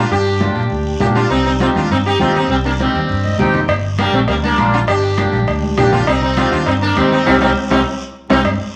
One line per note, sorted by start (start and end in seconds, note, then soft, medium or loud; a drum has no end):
0.00 0.11 D4 medium
0.00 0.11 F4 loud
0.11 0.46 G2 loud
0.11 0.97 D4 medium
0.11 1.00 G4 loud
0.11 long guiro medium
0.26 high conga soft
0.40 0.62 A#3 medium
0.40 0.62 D4 medium
0.40 0.62 F4 medium
0.40 high conga loud
0.40 short guiro medium
0.55 0.67 A#2 medium
0.55 short guiro medium
0.70 0.94 D2 medium
0.70 high conga soft
0.70 long guiro medium
1.00 1.24 A#2 medium
1.00 1.21 A#3 medium
1.00 1.22 D4 medium
1.00 1.06 D4 medium
1.00 1.06 G4 medium
1.00 1.22 G4 medium
1.00 high conga medium
1.00 low conga medium
1.00 short guiro medium
1.15 1.30 D4 medium
1.15 1.29 F4 loud
1.15 short guiro medium
1.30 1.66 C2 loud
1.30 1.44 C4 medium
1.30 1.44 D#4 loud
1.30 long guiro medium
1.45 1.51 C4 medium
1.45 1.51 D#4 medium
1.45 high conga soft
1.60 1.81 C4 medium
1.60 1.66 C4 medium
1.60 1.81 D#4 medium
1.60 1.66 F4 medium
1.60 1.81 G4 medium
1.60 high conga loud
1.60 short guiro medium
1.75 1.87 D#2 medium
1.75 1.90 D4 medium
1.75 1.91 F4 medium
1.75 high conga medium
1.75 short guiro medium
1.89 2.14 G2 loud
1.89 1.96 C4 medium
1.89 1.96 D#4 loud
1.89 high conga soft
1.89 long guiro medium
2.06 2.20 D#4 medium
2.06 2.19 G4 loud
2.19 2.43 D#2 loud
2.19 2.40 C4 medium
2.19 2.34 C4 medium
2.19 2.41 D#4 medium
2.19 2.35 F4 medium
2.19 2.41 G4 loud
2.19 high conga medium
2.19 short guiro medium
2.35 2.49 C4 medium
2.35 2.49 D#4 loud
2.35 short guiro medium
2.50 2.85 C2 loud
2.50 2.55 G3 medium
2.50 2.55 C4 medium
2.50 long guiro medium
2.65 2.71 A#3 medium
2.65 2.70 D4 medium
2.65 high conga soft
2.79 3.36 G3 medium
2.79 3.00 C4 medium
2.79 3.35 C4 medium
2.79 3.00 D#4 medium
2.79 3.01 G4 medium
2.79 high conga loud
2.79 short guiro medium
2.94 3.06 D#2 medium
2.94 short guiro medium
3.09 3.33 G2 medium
3.09 high conga soft
3.09 long guiro medium
3.24 3.38 D#5 medium
3.24 high conga medium
3.38 3.62 D#2 loud
3.38 3.60 C4 loud
3.38 3.60 D#4 medium
3.38 3.60 G4 loud
3.38 3.67 G5 medium
3.38 high conga medium
3.38 low conga medium
3.38 short guiro medium
3.54 low conga medium
3.54 short guiro medium
3.68 4.04 G1 loud
3.68 cowbell loud
3.68 long guiro medium
3.83 high conga soft
3.98 4.13 G3 medium
3.98 4.19 A#3 medium
3.98 4.13 A#3 medium
3.98 4.20 D4 medium
3.98 4.20 G4 medium
3.98 cowbell medium
3.98 high conga loud
3.98 short guiro medium
4.12 4.25 A#1 medium
4.12 4.19 A3 medium
4.12 4.19 C4 medium
4.12 high conga medium
4.12 short guiro medium
4.28 4.52 D2 loud
4.28 4.34 G3 medium
4.28 4.33 A#3 medium
4.28 cowbell medium
4.28 high conga soft
4.28 long guiro medium
4.43 4.72 A#3 medium
4.43 4.71 D4 loud
4.43 high conga medium
4.57 4.82 A#1 loud
4.57 4.79 A#3 medium
4.57 4.79 D4 medium
4.57 4.79 F4 medium
4.57 cowbell medium
4.57 high conga medium
4.57 short guiro medium
4.73 4.79 D4 medium
4.73 4.79 F4 loud
4.73 short guiro medium
4.87 5.23 G1 loud
4.87 5.74 D4 medium
4.87 5.76 G4 loud
4.87 cowbell loud
4.87 long guiro medium
5.03 high conga soft
5.17 5.39 A#3 medium
5.17 5.39 D4 medium
5.17 5.39 G4 medium
5.17 cowbell medium
5.17 high conga loud
5.17 short guiro medium
5.32 5.44 A#1 medium
5.32 high conga medium
5.32 short guiro medium
5.47 5.71 D2 medium
5.47 cowbell medium
5.47 long guiro medium
5.62 high conga medium
5.77 6.01 A#1 medium
5.77 5.98 A#3 medium
5.77 5.98 D4 medium
5.77 5.92 D4 medium
5.77 5.91 G4 medium
5.77 5.99 G4 medium
5.77 cowbell medium
5.77 high conga medium
5.77 low conga medium
5.77 short guiro medium
5.92 6.07 D4 medium
5.92 6.06 F4 loud
5.92 low conga medium
5.92 short guiro medium
6.07 6.43 C2 loud
6.07 6.21 C4 medium
6.07 6.21 D#4 medium
6.07 cowbell loud
6.07 long guiro medium
6.22 6.36 C4 medium
6.22 6.36 D#4 medium
6.22 high conga soft
6.37 6.58 C4 medium
6.37 6.51 C4 medium
6.37 6.58 D#4 medium
6.37 6.50 F4 medium
6.37 6.58 G4 medium
6.37 cowbell medium
6.37 high conga loud
6.37 short guiro medium
6.52 6.64 D#2 medium
6.52 6.66 D4 medium
6.52 6.67 F4 medium
6.52 short guiro medium
6.66 6.91 G2 medium
6.66 6.73 C4 medium
6.66 6.72 D#4 loud
6.66 cowbell medium
6.66 high conga soft
6.66 long guiro medium
6.82 6.96 A#3 medium
6.82 6.96 D4 loud
6.96 7.20 D#2 loud
6.96 7.11 G3 medium
6.96 7.17 C4 medium
6.96 7.11 C4 medium
6.96 7.17 D#4 medium
6.96 7.18 G4 medium
6.96 cowbell medium
6.96 high conga medium
6.96 short guiro medium
7.11 7.25 C4 medium
7.11 7.25 D#4 medium
7.11 short guiro medium
7.26 7.37 C2 loud
7.26 7.36 G3 loud
7.26 7.36 C4 loud
7.26 7.36 D#4 loud
7.26 7.36 D#4 medium
7.26 7.36 G4 loud
7.26 high conga loud
7.26 high timbale loud
7.26 long guiro loud
7.41 7.52 C2 medium
7.41 7.50 G3 medium
7.41 7.51 C4 medium
7.41 7.51 C4 loud
7.41 7.50 D#4 loud
7.41 7.51 D#4 loud
7.41 7.51 G4 loud
7.41 high conga loud
7.41 high timbale loud
7.41 long guiro loud
7.70 7.82 C2 medium
7.70 7.80 G3 medium
7.70 7.80 C4 medium
7.70 7.81 C4 medium
7.70 7.80 D#4 medium
7.70 7.81 D#4 medium
7.70 7.81 G4 medium
7.70 high conga loud
7.70 high timbale loud
7.70 long guiro loud
8.30 8.41 C2 loud
8.30 8.40 G3 loud
8.30 8.40 C4 loud
8.30 8.40 C4 medium
8.30 8.40 D#4 loud
8.30 8.40 D#4 medium
8.30 8.40 G4 medium
8.30 high conga loud
8.30 high timbale loud
8.30 long guiro loud
8.44 8.57 G2 loud
8.44 cowbell loud
8.44 long guiro medium
8.61 high conga soft